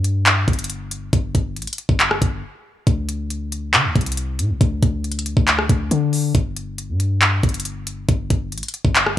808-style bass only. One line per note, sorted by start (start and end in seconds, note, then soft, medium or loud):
0.00 0.45 G2 loud
0.48 1.10 G1 loud
1.13 1.34 G1 loud
1.35 1.58 G1 loud
1.56 1.67 A1 loud
1.89 2.20 G1 loud
2.22 2.43 G1 loud
2.87 3.75 D2 loud
3.74 3.86 D3 loud
3.85 3.95 D2 loud
3.96 4.41 C2 loud
4.39 4.51 A2 loud
4.50 4.60 C2 loud
4.61 4.82 D2 loud
4.83 5.35 D2 loud
5.37 5.68 D2 loud
5.69 5.90 D2 loud
5.91 6.33 D3 loud
6.35 6.91 G1 loud
6.89 7.41 G2 loud
7.43 8.06 G1 loud
8.09 8.29 G1 loud
8.30 8.54 G1 loud
8.52 8.62 A1 loud
8.85 9.16 G1 loud